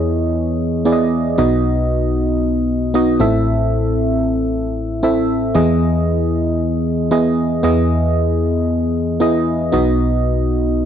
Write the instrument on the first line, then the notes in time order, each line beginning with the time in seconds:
fm electric piano
Already playing: E2 E3 B3 E4 G#4 C#5 D#5
0.85 B3 E4 G#4 D5
0.93 D#5
1.38 B1 B2 B3 D#4 F#4 D#5
2.94 B3 D#4 F#4 D#5
3.20 A1 A2 C4 E4 A4 E5
5.03 C4 E4 A4 E5
5.55 E2 E3 B3 E4 G#4 D#5
7.11 B3 E4 G#4 D#5
7.63 E2 E3 B3 E4 G#4 D#5
9.20 B3 E4 G#4 D#5
9.72 B1 B2 B3 D#4 F#4 D#5